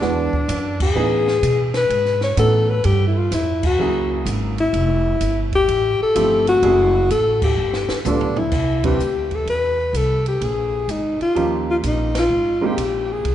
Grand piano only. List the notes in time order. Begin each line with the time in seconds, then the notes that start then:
0.01 E3 G#3 B3 D4 F#4
0.95 E3 B3 C#4 D#4 G#4
2.37 E3 B3 C#4 D#4 F#4
3.79 F#3 A#3 C#4 E4 G#4
6.15 F3 A3 C4 E4 G4
6.63 F#3 A3 C#4 E4 G#4
8.06 G3 B3 D4 F4 A4
8.84 G3 C4 D4 E4 B4
11.35 F3 A#3 C#4 D#4 G4
12.61 G#3 A#3 C4 D#4 G4